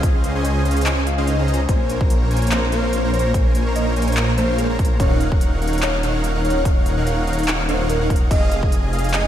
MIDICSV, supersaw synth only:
0, 0, Header, 1, 2, 480
1, 0, Start_track
1, 0, Tempo, 413793
1, 38, Time_signature, 4, 2, 24, 8
1, 10758, End_track
2, 0, Start_track
2, 0, Title_t, "Supersaw synth"
2, 0, Program_c, 0, 81
2, 37, Note_on_c, 0, 77, 103
2, 38, Note_on_c, 0, 61, 90
2, 38, Note_on_c, 0, 68, 84
2, 38, Note_on_c, 0, 72, 84
2, 377, Note_off_c, 0, 61, 0
2, 377, Note_off_c, 0, 68, 0
2, 377, Note_off_c, 0, 72, 0
2, 377, Note_off_c, 0, 77, 0
2, 408, Note_on_c, 0, 61, 89
2, 408, Note_on_c, 0, 68, 80
2, 408, Note_on_c, 0, 75, 82
2, 408, Note_on_c, 0, 80, 98
2, 409, Note_on_c, 0, 72, 85
2, 731, Note_off_c, 0, 61, 0
2, 731, Note_off_c, 0, 68, 0
2, 731, Note_off_c, 0, 72, 0
2, 731, Note_off_c, 0, 75, 0
2, 731, Note_off_c, 0, 80, 0
2, 756, Note_on_c, 0, 61, 87
2, 756, Note_on_c, 0, 75, 77
2, 757, Note_on_c, 0, 68, 79
2, 757, Note_on_c, 0, 72, 77
2, 757, Note_on_c, 0, 77, 93
2, 971, Note_off_c, 0, 61, 0
2, 971, Note_off_c, 0, 68, 0
2, 971, Note_off_c, 0, 72, 0
2, 971, Note_off_c, 0, 75, 0
2, 971, Note_off_c, 0, 77, 0
2, 996, Note_on_c, 0, 68, 87
2, 996, Note_on_c, 0, 72, 92
2, 996, Note_on_c, 0, 75, 85
2, 997, Note_on_c, 0, 61, 96
2, 997, Note_on_c, 0, 80, 106
2, 1162, Note_off_c, 0, 61, 0
2, 1162, Note_off_c, 0, 68, 0
2, 1162, Note_off_c, 0, 72, 0
2, 1162, Note_off_c, 0, 75, 0
2, 1162, Note_off_c, 0, 80, 0
2, 1367, Note_on_c, 0, 72, 92
2, 1367, Note_on_c, 0, 75, 90
2, 1368, Note_on_c, 0, 61, 100
2, 1368, Note_on_c, 0, 68, 89
2, 1368, Note_on_c, 0, 77, 109
2, 1577, Note_off_c, 0, 61, 0
2, 1577, Note_off_c, 0, 68, 0
2, 1577, Note_off_c, 0, 72, 0
2, 1577, Note_off_c, 0, 75, 0
2, 1577, Note_off_c, 0, 77, 0
2, 1607, Note_on_c, 0, 61, 92
2, 1607, Note_on_c, 0, 68, 82
2, 1607, Note_on_c, 0, 72, 83
2, 1607, Note_on_c, 0, 75, 81
2, 1607, Note_on_c, 0, 82, 98
2, 1859, Note_off_c, 0, 61, 0
2, 1859, Note_off_c, 0, 68, 0
2, 1859, Note_off_c, 0, 72, 0
2, 1859, Note_off_c, 0, 75, 0
2, 1859, Note_off_c, 0, 82, 0
2, 1957, Note_on_c, 0, 58, 93
2, 1957, Note_on_c, 0, 70, 83
2, 1957, Note_on_c, 0, 72, 86
2, 1957, Note_on_c, 0, 73, 83
2, 1957, Note_on_c, 0, 80, 101
2, 2297, Note_off_c, 0, 58, 0
2, 2297, Note_off_c, 0, 70, 0
2, 2297, Note_off_c, 0, 72, 0
2, 2297, Note_off_c, 0, 73, 0
2, 2297, Note_off_c, 0, 80, 0
2, 2328, Note_on_c, 0, 58, 90
2, 2328, Note_on_c, 0, 72, 82
2, 2328, Note_on_c, 0, 73, 83
2, 2329, Note_on_c, 0, 70, 85
2, 2329, Note_on_c, 0, 82, 97
2, 2651, Note_off_c, 0, 58, 0
2, 2651, Note_off_c, 0, 72, 0
2, 2652, Note_off_c, 0, 70, 0
2, 2652, Note_off_c, 0, 73, 0
2, 2652, Note_off_c, 0, 82, 0
2, 2677, Note_on_c, 0, 58, 86
2, 2677, Note_on_c, 0, 70, 76
2, 2677, Note_on_c, 0, 72, 79
2, 2677, Note_on_c, 0, 73, 78
2, 2677, Note_on_c, 0, 80, 94
2, 2891, Note_off_c, 0, 58, 0
2, 2891, Note_off_c, 0, 70, 0
2, 2891, Note_off_c, 0, 72, 0
2, 2891, Note_off_c, 0, 73, 0
2, 2891, Note_off_c, 0, 80, 0
2, 2917, Note_on_c, 0, 58, 96
2, 2917, Note_on_c, 0, 70, 88
2, 2917, Note_on_c, 0, 72, 89
2, 2917, Note_on_c, 0, 73, 91
2, 2917, Note_on_c, 0, 82, 108
2, 3083, Note_off_c, 0, 58, 0
2, 3083, Note_off_c, 0, 70, 0
2, 3083, Note_off_c, 0, 72, 0
2, 3083, Note_off_c, 0, 73, 0
2, 3083, Note_off_c, 0, 82, 0
2, 3157, Note_on_c, 0, 70, 83
2, 3158, Note_on_c, 0, 58, 95
2, 3158, Note_on_c, 0, 72, 84
2, 3158, Note_on_c, 0, 73, 86
2, 3158, Note_on_c, 0, 77, 99
2, 3497, Note_off_c, 0, 58, 0
2, 3497, Note_off_c, 0, 70, 0
2, 3497, Note_off_c, 0, 72, 0
2, 3497, Note_off_c, 0, 73, 0
2, 3497, Note_off_c, 0, 77, 0
2, 3528, Note_on_c, 0, 70, 83
2, 3528, Note_on_c, 0, 72, 87
2, 3528, Note_on_c, 0, 73, 87
2, 3528, Note_on_c, 0, 82, 100
2, 3529, Note_on_c, 0, 58, 95
2, 3611, Note_off_c, 0, 70, 0
2, 3611, Note_off_c, 0, 72, 0
2, 3611, Note_off_c, 0, 73, 0
2, 3612, Note_off_c, 0, 58, 0
2, 3612, Note_off_c, 0, 82, 0
2, 3638, Note_on_c, 0, 58, 89
2, 3638, Note_on_c, 0, 70, 80
2, 3638, Note_on_c, 0, 72, 81
2, 3638, Note_on_c, 0, 73, 79
2, 3638, Note_on_c, 0, 82, 96
2, 3852, Note_off_c, 0, 58, 0
2, 3852, Note_off_c, 0, 70, 0
2, 3852, Note_off_c, 0, 72, 0
2, 3852, Note_off_c, 0, 73, 0
2, 3852, Note_off_c, 0, 82, 0
2, 3877, Note_on_c, 0, 70, 85
2, 3877, Note_on_c, 0, 72, 82
2, 3877, Note_on_c, 0, 80, 99
2, 3878, Note_on_c, 0, 58, 92
2, 4217, Note_off_c, 0, 58, 0
2, 4217, Note_off_c, 0, 70, 0
2, 4217, Note_off_c, 0, 72, 0
2, 4217, Note_off_c, 0, 80, 0
2, 4249, Note_on_c, 0, 70, 80
2, 4249, Note_on_c, 0, 72, 81
2, 4249, Note_on_c, 0, 73, 81
2, 4249, Note_on_c, 0, 82, 100
2, 4250, Note_on_c, 0, 58, 88
2, 4572, Note_off_c, 0, 58, 0
2, 4572, Note_off_c, 0, 70, 0
2, 4572, Note_off_c, 0, 72, 0
2, 4572, Note_off_c, 0, 73, 0
2, 4572, Note_off_c, 0, 82, 0
2, 4598, Note_on_c, 0, 72, 78
2, 4598, Note_on_c, 0, 73, 77
2, 4599, Note_on_c, 0, 58, 83
2, 4599, Note_on_c, 0, 70, 76
2, 4599, Note_on_c, 0, 80, 94
2, 4812, Note_off_c, 0, 58, 0
2, 4812, Note_off_c, 0, 70, 0
2, 4812, Note_off_c, 0, 72, 0
2, 4812, Note_off_c, 0, 73, 0
2, 4812, Note_off_c, 0, 80, 0
2, 4838, Note_on_c, 0, 58, 94
2, 4838, Note_on_c, 0, 70, 88
2, 4838, Note_on_c, 0, 72, 89
2, 4838, Note_on_c, 0, 73, 88
2, 4838, Note_on_c, 0, 82, 106
2, 5003, Note_off_c, 0, 58, 0
2, 5003, Note_off_c, 0, 70, 0
2, 5003, Note_off_c, 0, 72, 0
2, 5003, Note_off_c, 0, 73, 0
2, 5003, Note_off_c, 0, 82, 0
2, 5078, Note_on_c, 0, 58, 92
2, 5078, Note_on_c, 0, 70, 85
2, 5078, Note_on_c, 0, 72, 83
2, 5078, Note_on_c, 0, 77, 101
2, 5079, Note_on_c, 0, 73, 84
2, 5417, Note_off_c, 0, 58, 0
2, 5417, Note_off_c, 0, 77, 0
2, 5418, Note_off_c, 0, 70, 0
2, 5418, Note_off_c, 0, 72, 0
2, 5418, Note_off_c, 0, 73, 0
2, 5448, Note_on_c, 0, 70, 87
2, 5448, Note_on_c, 0, 73, 88
2, 5449, Note_on_c, 0, 58, 97
2, 5449, Note_on_c, 0, 72, 85
2, 5449, Note_on_c, 0, 82, 101
2, 5531, Note_off_c, 0, 70, 0
2, 5531, Note_off_c, 0, 73, 0
2, 5532, Note_off_c, 0, 58, 0
2, 5532, Note_off_c, 0, 72, 0
2, 5532, Note_off_c, 0, 82, 0
2, 5558, Note_on_c, 0, 58, 89
2, 5772, Note_off_c, 0, 58, 0
2, 5798, Note_on_c, 0, 63, 91
2, 5798, Note_on_c, 0, 70, 85
2, 5798, Note_on_c, 0, 73, 85
2, 5798, Note_on_c, 0, 77, 84
2, 5798, Note_on_c, 0, 78, 100
2, 6137, Note_off_c, 0, 63, 0
2, 6137, Note_off_c, 0, 70, 0
2, 6137, Note_off_c, 0, 73, 0
2, 6137, Note_off_c, 0, 77, 0
2, 6137, Note_off_c, 0, 78, 0
2, 6168, Note_on_c, 0, 63, 86
2, 6168, Note_on_c, 0, 70, 83
2, 6168, Note_on_c, 0, 73, 80
2, 6168, Note_on_c, 0, 78, 103
2, 6169, Note_on_c, 0, 77, 79
2, 6491, Note_off_c, 0, 63, 0
2, 6491, Note_off_c, 0, 70, 0
2, 6491, Note_off_c, 0, 73, 0
2, 6491, Note_off_c, 0, 77, 0
2, 6491, Note_off_c, 0, 78, 0
2, 6517, Note_on_c, 0, 63, 83
2, 6517, Note_on_c, 0, 77, 78
2, 6518, Note_on_c, 0, 70, 80
2, 6518, Note_on_c, 0, 73, 78
2, 6518, Note_on_c, 0, 78, 93
2, 6731, Note_off_c, 0, 63, 0
2, 6731, Note_off_c, 0, 73, 0
2, 6731, Note_off_c, 0, 77, 0
2, 6732, Note_off_c, 0, 70, 0
2, 6732, Note_off_c, 0, 78, 0
2, 6757, Note_on_c, 0, 78, 107
2, 6758, Note_on_c, 0, 63, 99
2, 6758, Note_on_c, 0, 70, 87
2, 6758, Note_on_c, 0, 73, 85
2, 6758, Note_on_c, 0, 77, 89
2, 6923, Note_off_c, 0, 63, 0
2, 6923, Note_off_c, 0, 70, 0
2, 6923, Note_off_c, 0, 73, 0
2, 6923, Note_off_c, 0, 77, 0
2, 6923, Note_off_c, 0, 78, 0
2, 6997, Note_on_c, 0, 63, 90
2, 6997, Note_on_c, 0, 70, 82
2, 6997, Note_on_c, 0, 73, 87
2, 6997, Note_on_c, 0, 77, 84
2, 6997, Note_on_c, 0, 78, 98
2, 7337, Note_off_c, 0, 63, 0
2, 7337, Note_off_c, 0, 70, 0
2, 7337, Note_off_c, 0, 73, 0
2, 7337, Note_off_c, 0, 77, 0
2, 7337, Note_off_c, 0, 78, 0
2, 7368, Note_on_c, 0, 63, 94
2, 7368, Note_on_c, 0, 70, 87
2, 7368, Note_on_c, 0, 73, 86
2, 7368, Note_on_c, 0, 77, 88
2, 7368, Note_on_c, 0, 78, 101
2, 7451, Note_off_c, 0, 63, 0
2, 7451, Note_off_c, 0, 70, 0
2, 7451, Note_off_c, 0, 73, 0
2, 7451, Note_off_c, 0, 77, 0
2, 7451, Note_off_c, 0, 78, 0
2, 7476, Note_on_c, 0, 73, 76
2, 7477, Note_on_c, 0, 63, 87
2, 7477, Note_on_c, 0, 70, 81
2, 7477, Note_on_c, 0, 77, 81
2, 7477, Note_on_c, 0, 78, 97
2, 7691, Note_off_c, 0, 63, 0
2, 7691, Note_off_c, 0, 70, 0
2, 7691, Note_off_c, 0, 73, 0
2, 7691, Note_off_c, 0, 77, 0
2, 7691, Note_off_c, 0, 78, 0
2, 7717, Note_on_c, 0, 63, 89
2, 7717, Note_on_c, 0, 70, 84
2, 7717, Note_on_c, 0, 73, 83
2, 7717, Note_on_c, 0, 77, 83
2, 7717, Note_on_c, 0, 78, 100
2, 8057, Note_off_c, 0, 63, 0
2, 8057, Note_off_c, 0, 70, 0
2, 8057, Note_off_c, 0, 73, 0
2, 8057, Note_off_c, 0, 77, 0
2, 8057, Note_off_c, 0, 78, 0
2, 8089, Note_on_c, 0, 63, 91
2, 8089, Note_on_c, 0, 70, 84
2, 8089, Note_on_c, 0, 73, 81
2, 8089, Note_on_c, 0, 77, 82
2, 8089, Note_on_c, 0, 78, 97
2, 8412, Note_off_c, 0, 63, 0
2, 8412, Note_off_c, 0, 70, 0
2, 8412, Note_off_c, 0, 73, 0
2, 8412, Note_off_c, 0, 77, 0
2, 8412, Note_off_c, 0, 78, 0
2, 8438, Note_on_c, 0, 63, 82
2, 8438, Note_on_c, 0, 73, 76
2, 8438, Note_on_c, 0, 77, 79
2, 8438, Note_on_c, 0, 78, 92
2, 8439, Note_on_c, 0, 70, 78
2, 8652, Note_off_c, 0, 63, 0
2, 8652, Note_off_c, 0, 70, 0
2, 8652, Note_off_c, 0, 73, 0
2, 8652, Note_off_c, 0, 77, 0
2, 8652, Note_off_c, 0, 78, 0
2, 8677, Note_on_c, 0, 73, 85
2, 8678, Note_on_c, 0, 63, 96
2, 8678, Note_on_c, 0, 70, 88
2, 8678, Note_on_c, 0, 77, 87
2, 8678, Note_on_c, 0, 78, 106
2, 8843, Note_off_c, 0, 63, 0
2, 8843, Note_off_c, 0, 70, 0
2, 8843, Note_off_c, 0, 73, 0
2, 8843, Note_off_c, 0, 77, 0
2, 8843, Note_off_c, 0, 78, 0
2, 8918, Note_on_c, 0, 70, 85
2, 8918, Note_on_c, 0, 78, 101
2, 8919, Note_on_c, 0, 63, 93
2, 8919, Note_on_c, 0, 73, 86
2, 8919, Note_on_c, 0, 77, 83
2, 9258, Note_off_c, 0, 63, 0
2, 9258, Note_off_c, 0, 70, 0
2, 9258, Note_off_c, 0, 73, 0
2, 9258, Note_off_c, 0, 77, 0
2, 9258, Note_off_c, 0, 78, 0
2, 9289, Note_on_c, 0, 63, 93
2, 9289, Note_on_c, 0, 70, 86
2, 9289, Note_on_c, 0, 73, 83
2, 9289, Note_on_c, 0, 77, 85
2, 9289, Note_on_c, 0, 78, 105
2, 9372, Note_off_c, 0, 63, 0
2, 9372, Note_off_c, 0, 70, 0
2, 9372, Note_off_c, 0, 73, 0
2, 9372, Note_off_c, 0, 77, 0
2, 9372, Note_off_c, 0, 78, 0
2, 9398, Note_on_c, 0, 63, 88
2, 9398, Note_on_c, 0, 70, 81
2, 9398, Note_on_c, 0, 73, 78
2, 9398, Note_on_c, 0, 77, 79
2, 9398, Note_on_c, 0, 78, 93
2, 9612, Note_off_c, 0, 63, 0
2, 9612, Note_off_c, 0, 70, 0
2, 9612, Note_off_c, 0, 73, 0
2, 9612, Note_off_c, 0, 77, 0
2, 9612, Note_off_c, 0, 78, 0
2, 9638, Note_on_c, 0, 68, 89
2, 9638, Note_on_c, 0, 75, 86
2, 9638, Note_on_c, 0, 77, 104
2, 9977, Note_off_c, 0, 77, 0
2, 9978, Note_off_c, 0, 68, 0
2, 9978, Note_off_c, 0, 75, 0
2, 10008, Note_on_c, 0, 68, 91
2, 10009, Note_on_c, 0, 75, 81
2, 10009, Note_on_c, 0, 80, 100
2, 10332, Note_off_c, 0, 68, 0
2, 10332, Note_off_c, 0, 75, 0
2, 10332, Note_off_c, 0, 80, 0
2, 10358, Note_on_c, 0, 68, 85
2, 10358, Note_on_c, 0, 75, 79
2, 10359, Note_on_c, 0, 77, 93
2, 10572, Note_off_c, 0, 68, 0
2, 10572, Note_off_c, 0, 75, 0
2, 10572, Note_off_c, 0, 77, 0
2, 10597, Note_on_c, 0, 68, 100
2, 10598, Note_on_c, 0, 75, 91
2, 10598, Note_on_c, 0, 80, 106
2, 10758, Note_off_c, 0, 68, 0
2, 10758, Note_off_c, 0, 75, 0
2, 10758, Note_off_c, 0, 80, 0
2, 10758, End_track
0, 0, End_of_file